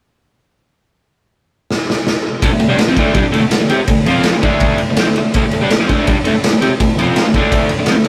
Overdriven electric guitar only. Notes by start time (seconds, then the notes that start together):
2.42 D3 A3
2.52 D3 A3
2.60 D3 A3
2.69 G3 D4
2.77 D3 A3
2.88 F3 C4
2.98 D3 A3 D4
3.14 G3 D4
3.24 muted overdriven electric guitar stroke
3.32 D3 A3
3.43 muted overdriven electric guitar stroke
3.52 muted overdriven electric guitar stroke
3.61 D3 A3
3.70 C4 G4
3.79 muted overdriven electric guitar stroke
3.89 D3 A3
4.06 F3 C4 F4
4.34 D3 A3
4.42 D3 A3 D4
4.80 muted overdriven electric guitar stroke
4.90 D3 A3
4.99 F3 C4
5.08 D3 A3
5.18 D3 A3
5.36 D3 A3
5.45 D3 A3
5.53 D3 A3
5.62 G3 D4
5.71 D3 A3
5.79 F3 C4
5.89 D3 A3 D4
6.08 G3 D4
6.17 muted overdriven electric guitar stroke
6.24 D3 A3
6.35 muted overdriven electric guitar stroke
6.44 muted overdriven electric guitar stroke
6.52 D3 A3
6.61 C4 G4
6.71 muted overdriven electric guitar stroke
6.80 D3 A3
6.98 F3 C4 F4
7.27 D3 A3
7.35 D3 A3 D4
7.72 muted overdriven electric guitar stroke
7.79 D3 A3
7.88 F3 C4
7.96 D3 A3